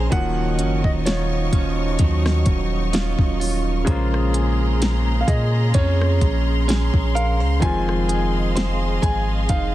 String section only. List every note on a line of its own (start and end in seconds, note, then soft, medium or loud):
0.12 3.83 D#4 medium
0.12 3.83 C#5 medium
0.12 3.83 D#5 medium
0.12 3.83 C#6 medium
3.87 7.59 C#4 medium
3.87 7.59 G#4 medium
3.87 7.58 A#5 medium
3.87 9.75 C6 medium
7.62 9.75 G#4 medium
7.62 9.75 D#5 medium
7.62 9.75 F5 medium